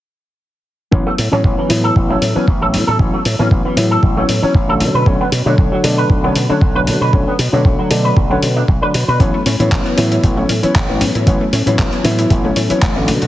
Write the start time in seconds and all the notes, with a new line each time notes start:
0.91 A1 E3 F#3 B3 C#4, kick
1.06 A3
1.18 A2, open hi-hat
1.31 A2 E3 F#3 B3 C#4
1.44 A1, kick
1.58 E3
1.69 A2 E3 F#3 B3 E4, open hi-hat
1.84 A4
1.96 A1, kick
2.09 E3 F#3 A3 B3 C#4
2.22 A2, open hi-hat
2.35 E3 F#3 B3 C#4, muted slap bass stroke
2.48 A1, kick
2.61 E3 F#3 B3 C#4 A4
2.74 A2, open hi-hat
2.87 A2 A4
2.99 A1 E3 F#3 B3 C#4, kick
3.13 A3
3.25 A2, open hi-hat
3.39 A2 E3 F#3 B3 C#4
3.51 A1, kick
3.65 E3
3.76 A2 E3 F#3 B3 E4, open hi-hat
3.91 A4
4.03 A1, kick
4.16 E3 F#3 A3 B3 C#4
4.29 A2, open hi-hat
4.42 E3 F#3 B3 C#4, muted slap bass stroke
4.54 A1, kick
4.68 D3 F#3 A3 C#4 A4
4.80 B2, open hi-hat
4.94 B2 B4
5.06 B1 D3 F#3 A3 C#4, kick
5.20 B3
5.32 B2, open hi-hat
5.46 B2 D3 F#3 A3 D4 C#5
5.58 B1, kick
5.72 F#3
5.84 B2 D3 F#3 A3 D4, open hi-hat
5.98 B4
6.10 B1, kick
6.23 D3 F#3 A3 B3 C#4
6.36 B2, open hi-hat
6.49 D3 F#3 A3 C#4 D4, muted slap bass stroke
6.61 B1, kick
6.75 D3 F#3 A3 B4 C#5
6.87 B2, open hi-hat
7.01 B2 B4
7.13 B1 D3 F#3 A3 C#4, kick
7.27 B3
7.39 B2, open hi-hat
7.52 B2 D3 F#3 A3 D4 C#5
7.65 B1, kick
7.79 F#3
7.90 B2 D3 F#3 A3 D4, open hi-hat
8.04 B4
8.17 B1, kick
8.30 D3 F#3 A3 B3 C#4
8.43 B2, open hi-hat
8.56 D4
8.68 B1, kick
8.81 D3 F#3 A3 D4 B4
8.94 B2, open hi-hat
9.08 B2 B4
9.19 A1 E3 F#3 A3 B3 C#4, kick, closed hi-hat
9.34 A3
9.46 A2 C#4, open hi-hat
9.59 A2 E3 F#3 B3 C#4 E4, closed hi-hat
9.72 A1 A3, kick, clap, closed hi-hat
9.86 B3, closed hi-hat
9.97 A2 E3 F#3 B3 C#4 E4, open hi-hat
10.11 E4, closed hi-hat
10.24 A1 A3, kick, closed hi-hat
10.37 E3 F#3 A3 B3 C#4
10.49 A2 C#4, open hi-hat
10.63 E3 F#3 B3 C#4 E4, muted slap bass stroke, closed hi-hat
10.75 A1 A3, kick, clap, closed hi-hat
10.88 E3 F#3 B3 C#4
11.01 A2 C#4, open hi-hat
11.15 A2 E4, closed hi-hat
11.26 A1 E3 F#3 A3 B3 C#4, kick, closed hi-hat
11.41 A3
11.53 A2 C#4, open hi-hat
11.66 A2 E3 F#3 B3 C#4 E4, closed hi-hat
11.79 A1 A3, kick, clap, closed hi-hat
11.93 B3, closed hi-hat
12.04 A2 E3 F#3 B3 C#4 E4, open hi-hat
12.19 E4, closed hi-hat
12.30 A1 A3, kick, closed hi-hat
12.43 E3 F#3 A3 B3 C#4
12.56 A2 C#4, open hi-hat
12.69 E3 F#3 B3 C#4 E4, muted slap bass stroke, closed hi-hat
12.82 A1 A3, kick, clap, closed hi-hat
12.96 D3 F#3 A3 B3 C#4
13.08 B2 D4, open hi-hat
13.22 B2 F#4, closed hi-hat